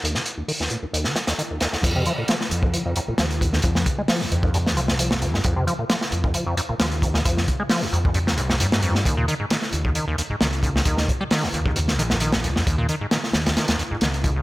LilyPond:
<<
  \new Staff \with { instrumentName = "Acid bass" } { \clef bass \time 4/4 \key f \minor \tempo 4 = 133 ees,16 ees16 r16 ees,16 ees16 ees,16 bes,16 ees,16 ees,16 ees16 g16 ees,16 ees16 ees,16 ees,16 ees,16 | f,16 c16 f16 bes,16 f16 r8 ees,16 f16 f,16 f,16 bes,16 f16 r16 f,16 ees,16 | f8 f,16 aes16 f16 ees,16 f,16 ees,16 g,16 f,16 f16 f,16 f16 ees,16 f,16 ees,16 | f,16 c16 f16 bes,16 f16 r8 ees,16 f16 f,16 f,16 bes,16 f16 r16 f,16 ees,16 |
f8 f,16 aes16 f16 ees,16 f,16 ees,16 g,16 f,16 aes,16 f,16 f,16 aes,16 f,16 aes,16 | ees,16 bes,16 ees16 aes,16 ees16 r8 des,16 ees16 ees,16 ees,16 aes,16 ees16 r16 ees,16 des,16 | ees8 ees,16 g16 ees16 des,16 ees,16 des,16 f,16 ees,16 ees16 ees,16 ees16 des,16 ees,16 des,16 | ees,16 bes,16 ees16 aes,16 ees16 r8 des,16 ees16 ees,16 ees,16 aes,16 ees16 r16 ees,16 des,16 | }
  \new Staff \with { instrumentName = "Fingered electric bass" } { \clef bass \time 4/4 \key f \minor r1 | f,8 r4 f,8 r4 ees,4 | f,8 r4 f,4 c,4~ c,16 g,16 | f,8 r4 f,8 r4 ees,4 |
f,8 r4 f,4 c,8 g,4 | ees,8 r4 ees,8 r4 des,4 | ees,8 r4 ees,4 bes,,4~ bes,,16 f,16 | ees,8 r4 ees,8 r4 des,4 | }
  \new DrumStaff \with { instrumentName = "Drums" } \drummode { \time 4/4 hh16 sn16 hh8 hho16 sn16 hh8 hh16 sn16 <hh sn>16 <hh sn>16 hh8 <hh sn>16 sn16 | <cymc hh bd>8 hh8 <hh sn>16 sn16 hh16 bd16 hh8 hh8 <hh sn>16 hh16 <hh bd>16 sn16 | <hh bd>16 sn16 <hh bd>8 <hho sn>16 sn16 hh16 bd16 hh16 sn16 hh16 sn16 hh16 sn16 hh16 sn16 | <hh bd>8 hh8 <hh sn>16 sn16 hh16 bd16 hh8 hh8 <hh sn>16 hh16 <hh bd>16 sn16 |
<hh bd>16 sn16 <hh bd>8 <hho sn>16 sn16 hh16 bd16 hh16 sn16 hh16 sn16 hh16 sn16 hh16 sn16 | <hh bd>8 hh8 <hh sn>16 sn16 hh16 bd16 hh8 hh8 <hh sn>16 hh16 <hh bd>16 sn16 | <hh bd>16 sn16 <hh bd>8 <hho sn>16 sn16 hh16 bd16 hh16 sn16 hh16 sn16 hh16 sn16 hh16 sn16 | <hh bd>8 hh8 <hh sn>16 sn16 <hh sn>16 <hh sn>16 <hh sn>16 <hh sn>16 hh8 <hh sn>16 hh16 <hh bd>8 | }
>>